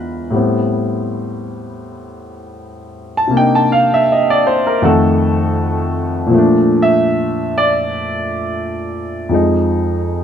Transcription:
0.00 0.32 E2 soft
0.00 0.33 D3 soft
0.00 0.32 E3 soft
0.00 0.34 G#3 soft
0.00 0.32 B3 soft
0.00 0.34 F4 soft
0.00 0.34 B4 medium
0.30 3.31 A2 soft
0.30 3.32 G3 soft
0.30 3.33 B3 soft
0.36 3.34 C4 soft
3.17 3.31 A5 medium
3.27 4.80 C3 soft
3.27 4.82 A#3 soft
3.35 4.84 D4 soft
3.35 4.85 D#4 medium
3.35 3.59 G5 medium
3.55 3.81 A5 medium
3.72 3.89 F5 medium
3.94 4.06 E5 medium
4.12 4.34 D#5 medium
4.30 4.56 D5 medium
4.47 4.64 C5 medium
4.67 4.80 A#4 medium
4.82 6.32 F2 medium
4.82 6.32 D#3 medium
4.82 6.32 A3 medium
4.82 6.33 F#4 medium
4.82 5.14 A4 medium
6.27 9.29 A#2 medium
6.27 9.29 F3 soft
6.34 9.32 A3 medium
6.34 9.34 D4 medium
6.82 7.53 E5 medium
7.58 8.53 D5 medium
9.29 10.24 F2 soft
9.29 10.24 F3 soft
9.29 10.24 G#3 soft
9.34 10.24 D#4 medium

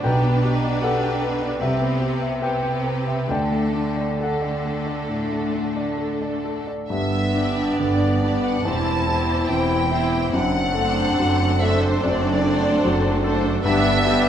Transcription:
0.03 1.58 B1 medium
0.03 1.58 B2 medium
0.03 1.58 D4 medium
0.03 1.58 G4 medium
0.03 1.58 B4 medium
0.03 0.79 B4 medium
0.03 0.78 G5 medium
0.24 0.55 B3 soft
0.45 0.76 G4 soft
0.64 0.95 D5 soft
0.83 1.58 A4 medium
0.83 1.15 B4 soft
0.83 1.57 F#5 medium
1.03 1.34 G5 soft
1.22 1.53 B4 soft
1.42 1.61 D5 soft
1.60 3.25 C2 soft
1.60 3.28 C3 medium
1.60 2.42 C4 soft
1.60 2.40 G4 soft
1.60 2.00 G4 soft
1.60 2.40 B4 soft
1.60 2.20 E5 medium
1.81 2.13 B3 soft
2.01 2.33 G4 soft
2.22 2.54 E5 soft
2.41 3.28 C4 soft
2.41 3.27 G4 soft
2.41 2.76 B4 soft
2.41 3.27 B4 soft
2.41 2.62 G5 medium
2.63 2.98 G5 soft
2.84 3.20 B4 soft
3.06 3.29 E5 soft
3.28 5.05 D2 medium
3.28 6.69 D3 soft
3.28 4.20 A3 soft
3.28 4.20 D4 soft
3.28 4.19 A4 soft
3.28 3.96 D5 soft
3.28 4.17 G5 medium
3.52 3.88 A3 soft
3.74 4.11 D4 soft
3.97 4.34 D5 soft
4.20 6.65 A3 soft
4.20 6.65 D4 soft
4.20 4.22 A4 soft
4.20 6.65 A4 soft
4.20 4.64 A4 soft
4.20 6.41 F#5 soft
4.42 4.78 D5 soft
4.65 5.01 A4 soft
4.87 5.22 D5 soft
5.09 5.44 A2 soft
5.32 5.67 A3 soft
5.54 5.90 D4 soft
5.77 6.12 D5 soft
5.98 6.35 A4 soft
6.22 6.58 D5 soft
6.45 6.81 A4 soft
6.67 6.90 D5 soft
6.89 7.69 G1 medium
6.89 7.69 G2 soft
6.89 8.61 G2 medium
6.89 7.75 B3 soft
6.89 7.76 B3 soft
6.89 7.75 D4 soft
6.89 7.75 E5 medium
7.34 8.21 B3 soft
7.34 8.06 D4 soft
7.34 8.21 D4 soft
7.34 8.21 G4 soft
7.34 8.21 D5 soft
7.79 8.56 G1 soft
7.79 8.55 G2 soft
7.79 8.49 D3 soft
7.79 8.69 B3 soft
7.79 8.65 B3 soft
7.79 8.64 D4 soft
7.79 8.65 D4 soft
7.79 8.44 D5 medium
7.79 8.45 D5 soft
8.23 8.65 B3 soft
8.23 8.65 D4 soft
8.23 8.64 G4 soft
8.23 8.64 D5 soft
8.43 8.67 F#5 soft
8.43 8.65 F#5 medium
8.65 9.40 E1 soft
8.65 9.39 E2 medium
8.65 10.28 E2 soft
8.65 9.07 C4 soft
8.65 9.49 C4 soft
8.65 9.50 C4 soft
8.65 9.07 E4 soft
8.65 9.48 E4 soft
8.65 9.50 E4 soft
8.65 9.07 G4 soft
8.65 9.07 C5 soft
8.65 9.50 A5 medium
8.65 9.49 A5 medium
9.08 9.89 C4 soft
9.08 9.89 E4 soft
9.08 9.75 E4 soft
9.08 9.89 G4 soft
9.08 9.89 C5 soft
9.49 10.23 E1 soft
9.49 10.22 E2 medium
9.49 10.16 E3 soft
9.49 10.31 C4 soft
9.49 10.35 E4 soft
9.49 10.32 E4 medium
9.49 10.31 G5 medium
9.49 10.32 G5 medium
9.90 10.32 C4 soft
9.90 10.31 E4 soft
9.90 10.33 E4 soft
9.90 10.32 G4 soft
9.90 10.32 C5 soft
10.31 11.08 F#1 medium
10.31 11.08 F#2 medium
10.31 11.99 F#2 medium
10.31 12.00 C4 medium
10.31 12.02 D4 soft
10.31 12.01 D4 medium
10.31 11.62 F#5 medium
10.31 11.58 F#5 medium
10.74 11.59 A3 soft
10.74 11.59 D4 soft
10.74 11.44 A4 soft
10.74 11.59 A4 soft
10.74 11.59 C5 soft
11.18 11.93 F#1 medium
11.18 11.93 F#2 medium
11.18 11.87 F#3 soft
11.60 12.41 A3 soft
11.60 12.41 D4 soft
11.60 12.42 A4 soft
11.60 12.28 A4 soft
11.60 12.42 C5 soft
11.60 11.82 E5 medium
11.81 12.02 C5 medium
11.81 12.03 C5 medium
12.02 12.74 F#1 medium
12.02 12.74 F#2 medium
12.02 13.61 F#2 soft
12.02 13.47 C4 medium
12.02 13.37 C4 medium
12.02 13.47 D4 medium
12.02 13.36 D4 medium
12.02 13.24 D5 medium
12.02 13.21 D5 medium
12.42 13.21 A3 medium
12.42 13.21 D4 medium
12.42 13.08 D4 medium
12.42 13.22 A4 medium
12.42 13.23 C5 medium
12.84 13.55 F#1 medium
12.84 13.55 F#2 medium
12.84 13.49 F#3 medium
13.23 13.64 A3 medium
13.23 13.64 D4 soft
13.23 13.64 A4 medium
13.23 13.64 C5 medium
13.63 14.29 G1 medium
13.63 14.29 G2 medium
13.63 14.29 B3 medium
13.63 14.05 B3 medium
13.63 14.29 D4 medium
13.63 14.05 D4 medium
13.63 14.05 G4 soft
13.63 14.05 B4 soft
13.63 14.29 E5 medium
14.06 14.29 B3 medium
14.06 14.29 D4 medium
14.06 14.29 G4 medium
14.06 14.29 B4 medium

